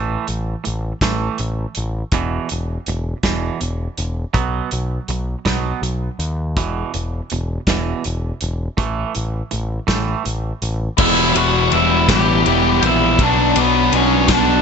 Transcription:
Already playing: picked electric bass A1, clean electric guitar A2 E3 A3
0.27 picked electric bass A1, clean electric guitar A2 E3, closed hi-hat
0.64 picked electric bass A1, clean electric guitar A2 E3, closed hi-hat
1.01 picked electric bass A1, clean electric guitar A2 E3 A3, kick, snare, closed hi-hat
1.38 picked electric bass A1, clean electric guitar E3, closed hi-hat
1.75 picked electric bass A1, closed hi-hat
2.12 picked electric bass E1, clean electric guitar E2 B2 E3, kick, closed hi-hat
2.49 picked electric bass E1, closed hi-hat
2.86 picked electric bass E1, clean electric guitar E2 B2, closed hi-hat
3.23 picked electric bass E1, clean electric guitar E2 B2 E3, kick, snare, closed hi-hat
3.60 picked electric bass E1, clean electric guitar E2 B2, closed hi-hat
3.98 picked electric bass E1, closed hi-hat
4.34 picked electric bass B1, clean electric guitar B2 F#3 B3, kick, closed hi-hat
4.71 picked electric bass B1, clean electric guitar B2 F#3, closed hi-hat
5.08 picked electric bass B1, clean electric guitar B2 F#3, closed hi-hat
5.45 picked electric bass B1, clean electric guitar B2 F#3 B3, kick, snare, closed hi-hat
5.82 picked electric bass B1, clean electric guitar B2 F#3, closed hi-hat
6.19 picked electric bass D#2, closed hi-hat
6.57 picked electric bass E1, clean electric guitar E2 B2 E3, kick, closed hi-hat
6.94 picked electric bass E1, clean electric guitar E2 B2, closed hi-hat
7.30 picked electric bass E1, clean electric guitar E2 B2, closed hi-hat
7.67 picked electric bass E1, clean electric guitar E2 B2 E3, kick, snare, closed hi-hat
8.04 picked electric bass E1, clean electric guitar E2 B2, closed hi-hat
8.41 picked electric bass E1, closed hi-hat
8.77 picked electric bass A1, clean electric guitar A2 E3 A3, kick, closed hi-hat
9.15 picked electric bass A1, clean electric guitar A2 E3, closed hi-hat
9.51 picked electric bass A1, clean electric guitar A2 E3, closed hi-hat
9.87 picked electric bass A1, clean electric guitar A2 E3 A3, kick, snare, closed hi-hat
10.24 picked electric bass A1, clean electric guitar A2 E3, closed hi-hat
10.62 picked electric bass A1, closed hi-hat
10.98 picked electric bass E1, distorted electric guitar E2 B2, overdriven electric guitar E3 G3 B3 E4 G4, string machine G3 B4 E5 B5, lead electric guitar E4 E5, kick, crash
11.35 picked electric bass E1, overdriven electric guitar G3 B3 E4 G4, lead electric guitar F#4 F#5, ride
11.71 picked electric bass E1, overdriven electric guitar E3 G3 B3 E4 G4, lead electric guitar E4 E5, ride
12.08 picked electric bass A1, overdriven electric guitar G3 B3 E4 G4, lead electric guitar G4 G5, kick, snare, ride
12.46 picked electric bass E1, overdriven electric guitar E3 G3 B3 E4 G4, ride
12.82 picked electric bass A#1, overdriven electric guitar G3 B3 E4 G4, lead electric guitar E4, ride
12.87 lead electric guitar E5
13.17 picked electric bass B1, overdriven electric guitar B2 F#3 B3 D4 F#4, string machine F#4 F#5 B5, kick, ride
13.23 lead electric guitar D4 D5
13.56 picked electric bass B1, overdriven electric guitar F#3 B3 D4 F#4, ride
13.60 lead electric guitar B3 B4
13.92 picked electric bass B1, overdriven electric guitar B2 F#3 B3 D4 F#4, lead electric guitar C#4 C#5, ride
14.28 overdriven electric guitar B3 D4 F#4, lead electric guitar D4 D5, kick, snare, ride
14.34 overdriven electric guitar F#3

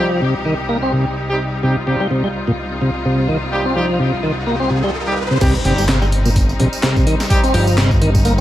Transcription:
Already playing: string section C2 C3 G3 D#4 G4, tonewheel organ F3
0.22 tonewheel organ C3
0.45 tonewheel organ D#3
0.69 tonewheel organ A#3
0.82 tonewheel organ C4
0.93 tonewheel organ C3
1.29 horn section G3 C4 D#4 G4
1.63 tonewheel organ C3, horn section G3 C4 D#4 G4, string section F4, riser
1.87 tonewheel organ C3, horn section G3 C4 D#4 G4
2.00 tonewheel organ G3
2.11 tonewheel organ C3
2.24 tonewheel organ G3
2.47 tonewheel organ A#2
2.82 tonewheel organ C3
3.05 tonewheel organ C3
3.29 tonewheel organ D#3
3.52 horn section G3 C4 D#4 G4
3.65 tonewheel organ C4
3.76 tonewheel organ F3, horn section G3 C4 D#4 G4
3.99 tonewheel organ C3
4.23 tonewheel organ D#3
4.47 tonewheel organ A#3
4.60 tonewheel organ C4
4.70 tonewheel organ C3
4.84 tonewheel organ G3
5.07 horn section G3 C4 D#4 G4
5.31 tonewheel organ C3
5.41 analog synth bass C2, tonewheel organ C3, string section G3 C4 D#4, horn section G3 C4 D#4 G4, kick, closed hi-hat, crash, tambourine, impact
5.55 tambourine
5.65 analog synth bass G1, tonewheel organ C3, horn section G3 C4 D#4 G4, closed hi-hat
5.78 tonewheel organ G3, tambourine
5.88 tonewheel organ C3, snare, clap, closed hi-hat, tambourine
6.02 tonewheel organ G3, tambourine
6.12 closed hi-hat
6.25 tonewheel organ A#2, tambourine
6.36 kick, closed hi-hat, tambourine
6.49 tambourine
6.59 analog synth bass A#1, tonewheel organ C3, closed hi-hat
6.73 tambourine
6.83 tonewheel organ C3, snare, clap, closed hi-hat, tambourine
6.96 kick, tambourine
7.07 tonewheel organ D#3, closed hi-hat
7.20 snare, tambourine
7.30 horn section G3 C4 D#4 G4, kick, closed hi-hat, tambourine
7.43 tonewheel organ C4, closed hi-hat, tambourine
7.54 analog synth bass G1, tonewheel organ F3, horn section G3 C4 D#4 G4, open hi-hat
7.67 tambourine
7.78 tonewheel organ C3, snare, clap, closed hi-hat
7.91 kick, tambourine
8.01 tonewheel organ D#3, closed hi-hat
8.15 kick, tambourine
8.25 tonewheel organ A#3, closed hi-hat, tambourine

